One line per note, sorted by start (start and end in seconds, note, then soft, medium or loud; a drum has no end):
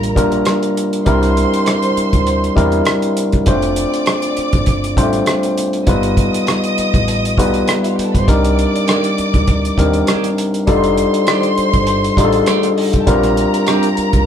0.00 0.16 A1 medium
0.00 0.15 G3 medium
0.00 0.16 A#3 medium
0.00 0.17 D4 medium
0.00 0.17 F4 medium
0.00 0.17 A#4 medium
0.00 0.72 A#4 medium
0.00 0.72 A#5 medium
0.00 closed hi-hat soft
0.15 0.40 A#1 medium
0.15 0.77 G3 medium
0.15 0.77 A#3 medium
0.15 0.77 D4 medium
0.15 0.77 F4 medium
0.15 0.77 A#4 medium
0.15 kick medium
0.15 closed hi-hat medium
0.32 closed hi-hat soft
0.45 cross-stick medium
0.45 closed hi-hat medium
0.63 closed hi-hat soft
0.77 closed hi-hat medium
0.93 closed hi-hat soft
1.06 1.44 C2 medium
1.06 1.88 G3 medium
1.06 1.88 C4 medium
1.06 1.88 D4 medium
1.06 1.88 E4 medium
1.06 1.88 A#4 medium
1.06 3.13 C5 medium
1.06 3.13 C6 medium
1.06 kick medium
1.06 closed hi-hat medium
1.23 cross-stick soft
1.23 closed hi-hat medium
1.37 closed hi-hat medium
1.54 closed hi-hat soft
1.66 cross-stick medium
1.66 closed hi-hat medium
1.83 closed hi-hat soft
1.97 muted fingered electric bass stroke soft
1.97 closed hi-hat medium
2.13 2.48 D2 medium
2.13 kick medium
2.13 closed hi-hat soft
2.27 closed hi-hat medium
2.44 closed hi-hat soft
2.56 2.81 E2 medium
2.56 3.17 G3 medium
2.56 3.17 C4 medium
2.56 3.17 D4 medium
2.56 3.17 E4 medium
2.56 3.18 A#4 medium
2.56 kick medium
2.56 closed hi-hat medium
2.72 closed hi-hat soft
2.85 cross-stick medium
2.85 closed hi-hat medium
3.02 closed hi-hat soft
3.17 closed hi-hat medium
3.32 kick medium
3.32 closed hi-hat soft
3.46 3.84 F1 medium
3.46 4.28 A3 medium
3.46 4.28 C4 medium
3.46 4.28 D4 medium
3.46 4.29 F4 medium
3.46 4.29 C5 medium
3.46 5.53 D5 medium
3.46 5.53 D6 medium
3.46 kick medium
3.46 closed hi-hat medium
3.62 closed hi-hat soft
3.76 closed hi-hat medium
3.94 closed hi-hat medium
4.06 cross-stick loud
4.06 closed hi-hat medium
4.22 closed hi-hat soft
4.37 muted fingered electric bass stroke soft
4.37 closed hi-hat medium
4.53 4.97 G1 medium
4.53 kick medium
4.53 closed hi-hat soft
4.66 kick medium
4.66 closed hi-hat medium
4.84 closed hi-hat medium
4.96 5.21 A1 medium
4.96 5.04 G3 medium
4.96 5.58 C4 medium
4.96 5.58 D4 medium
4.96 5.58 F4 medium
4.96 5.58 C5 medium
4.96 kick medium
4.96 closed hi-hat medium
5.03 5.61 A3 medium
5.13 closed hi-hat soft
5.26 cross-stick medium
5.26 closed hi-hat medium
5.43 closed hi-hat medium
5.58 closed hi-hat medium
5.73 closed hi-hat soft
5.86 6.24 G1 medium
5.86 6.68 G3 medium
5.86 6.68 B3 medium
5.86 6.69 D#4 medium
5.86 6.69 F4 medium
5.86 6.69 B4 medium
5.86 7.73 D#5 medium
5.86 7.73 D#6 medium
5.86 kick medium
5.86 closed hi-hat medium
6.03 closed hi-hat medium
6.17 kick medium
6.17 closed hi-hat medium
6.34 closed hi-hat medium
6.47 cross-stick medium
6.47 closed hi-hat medium
6.64 closed hi-hat soft
6.78 muted fingered electric bass stroke soft
6.78 closed hi-hat medium
6.94 7.38 A1 medium
6.94 kick medium
6.94 closed hi-hat soft
7.08 closed hi-hat medium
7.25 closed hi-hat medium
7.38 7.62 B1 medium
7.38 7.98 G3 medium
7.38 7.98 B3 medium
7.38 7.99 D#4 medium
7.38 7.99 F4 medium
7.38 7.99 B4 medium
7.38 kick medium
7.38 closed hi-hat medium
7.54 closed hi-hat soft
7.68 cross-stick medium
7.68 closed hi-hat medium
7.82 7.90 E4 soft
7.82 7.90 E5 medium
7.82 closed hi-hat soft
7.89 7.97 F4 medium
7.89 7.97 F5 medium
7.96 8.05 G4 medium
7.96 8.05 G5 medium
7.96 muted fingered electric bass stroke soft
7.96 closed hi-hat medium
8.04 8.13 A4 medium
8.04 8.13 A5 medium
8.12 8.25 G1 medium
8.12 8.20 B4 medium
8.12 8.20 B5 medium
8.12 kick medium
8.12 closed hi-hat soft
8.19 8.27 C5 medium
8.19 8.27 C6 medium
8.26 8.65 C2 medium
8.26 9.09 G3 medium
8.26 9.09 C4 medium
8.26 9.09 D4 medium
8.26 9.09 D#4 medium
8.26 9.10 A#4 medium
8.26 10.33 D5 medium
8.26 10.33 D6 medium
8.26 kick medium
8.26 closed hi-hat medium
8.45 closed hi-hat medium
8.59 closed hi-hat medium
8.76 closed hi-hat medium
8.87 9.07 D#3 medium
8.87 9.07 A#3 medium
8.87 9.07 D4 medium
8.87 9.08 G4 medium
8.87 cross-stick medium
8.87 closed hi-hat medium
9.04 closed hi-hat soft
9.18 muted fingered electric bass stroke soft
9.18 closed hi-hat medium
9.34 9.69 D2 medium
9.34 kick medium
9.34 closed hi-hat soft
9.47 kick medium
9.47 closed hi-hat medium
9.65 closed hi-hat medium
9.77 10.02 D#2 medium
9.77 10.38 G3 medium
9.77 10.38 C4 medium
9.77 10.38 D4 medium
9.77 10.39 D#4 medium
9.77 10.39 A#4 medium
9.77 kick medium
9.77 closed hi-hat medium
9.94 closed hi-hat soft
10.07 10.27 D#3 medium
10.07 10.28 A#3 medium
10.07 10.28 D4 medium
10.07 10.28 G4 medium
10.07 cross-stick medium
10.07 closed hi-hat medium
10.24 closed hi-hat soft
10.38 closed hi-hat medium
10.54 closed hi-hat soft
10.67 11.05 F1 medium
10.67 11.49 G3 medium
10.67 11.49 D4 medium
10.67 11.49 D#4 medium
10.67 11.49 F4 medium
10.67 11.49 A4 medium
10.67 12.68 C5 medium
10.67 12.68 C6 loud
10.67 kick medium
10.67 closed hi-hat medium
10.84 closed hi-hat medium
10.98 closed hi-hat medium
11.14 closed hi-hat medium
11.27 11.47 D#3 medium
11.27 11.47 A3 medium
11.27 11.48 D4 medium
11.27 11.48 G4 medium
11.27 cross-stick loud
11.27 closed hi-hat medium
11.43 closed hi-hat soft
11.58 muted fingered electric bass stroke soft
11.58 closed hi-hat medium
11.73 12.09 G1 medium
11.73 kick medium
11.73 closed hi-hat soft
11.87 closed hi-hat medium
12.04 closed hi-hat medium
12.17 12.41 A1 medium
12.17 12.78 G3 medium
12.17 12.78 D4 medium
12.17 12.78 D#4 medium
12.17 12.78 F4 medium
12.17 12.25 G#4 medium
12.17 kick medium
12.17 closed hi-hat medium
12.25 12.82 A4 medium
12.33 closed hi-hat soft
12.46 12.67 D#3 medium
12.46 12.67 A3 medium
12.46 12.67 D4 medium
12.46 12.67 G4 medium
12.46 cross-stick medium
12.46 closed hi-hat medium
12.63 closed hi-hat medium
12.77 12.86 D#4 medium
12.77 12.86 D#5 medium
12.77 open hi-hat medium
12.86 12.94 F4 medium
12.86 12.94 F5 medium
12.93 13.01 G4 medium
12.93 13.01 G5 medium
12.93 kick medium
12.93 closed hi-hat soft
13.01 13.08 A4 medium
13.01 13.08 A5 medium
13.07 13.44 A#1 loud
13.07 13.88 G3 medium
13.07 13.88 C4 medium
13.07 13.89 D4 medium
13.07 13.89 F4 medium
13.07 13.89 A#4 medium
13.07 14.26 A#4 medium
13.07 14.26 A#5 loud
13.07 kick medium
13.07 closed hi-hat medium
13.23 cross-stick soft
13.23 closed hi-hat soft
13.37 closed hi-hat medium
13.54 closed hi-hat medium
13.67 13.87 G3 medium
13.67 13.87 C4 medium
13.67 13.87 D4 medium
13.67 13.87 G4 medium
13.67 cross-stick medium
13.67 closed hi-hat medium
13.83 closed hi-hat soft
13.97 muted fingered electric bass stroke soft
13.97 closed hi-hat medium
14.13 14.26 C2 medium
14.13 kick medium
14.13 closed hi-hat soft